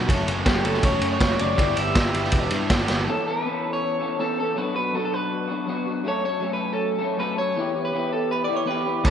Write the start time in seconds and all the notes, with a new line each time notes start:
0.06 F#1 F#2 C#3 F#3 A3 C#4 F#4 A4, kick, ride
0.27 F#1, ride
0.46 F#1 G4 G5, kick, snare, ride
0.62 F#1 F#2 C#3 F#3 A3 C#4 F#4 A4, ride
0.67 A5
0.74 snare
0.83 E1 C#5 C#6, kick, ride
1.01 F#2, ride
1.13 C#5 C#6
1.18 F#1 F#2 C#3 F#3 A3 C#4, kick, snare, ride
1.23 F#4
1.39 F#1 D5 D6, ride
1.57 G1 G3 B3 E4 G4, kick, ride
1.77 G1 E5 E6, ride
1.95 G1, kick, snare, ride
2.13 G1 G3 B3 E4 G4, ride
2.24 snare
2.32 E1, kick, ride
2.50 G2, ride
2.69 G1 G3 B3 E4 G4, kick, snare, ride
2.88 G1, snare, ride
3.07 E3 B3 C#4 A4
3.25 B3 C#4 A4 B4
3.43 E3 B3 C#4
3.47 A4
3.73 C#5
4.00 B3 C#4 A4
4.18 E3 B3 C#4 A4
4.38 B3 C#4 A4
4.56 F#3 B3 D4 F#4 B4
4.74 B3 D4 F#4 B4
4.92 F#3 B3 D4 F#4 A4
5.05 A4
5.14 B4
5.48 B3 D4 F#4
5.66 F#3 B3 D4 F#4
5.86 B3 D4 F#4
6.04 F#3 A3 C#4 A4
6.08 C#5
6.22 A3 C#4 A4 C#5
6.40 F#3 A3 C#4 A4
6.53 B4
6.73 A4
6.99 A3 C#4 A4
7.17 F#3 A3 C#4 A4 B4
7.38 A3 C#4 A4 C#5
7.56 E3 B3 E4 G4
7.73 B3 E4 G4
7.85 B4
7.92 E3 B3 E4 G4
8.13 A4
8.31 B4 B5
8.44 G4 D5 D6
8.48 B3 E4
8.55 C#5 C#6
8.65 E3 B3 E4 G4 B4
8.71 B5
8.84 B3 E4 G4
9.03 A1 A2 E3 B3 C#4 A4, kick, crash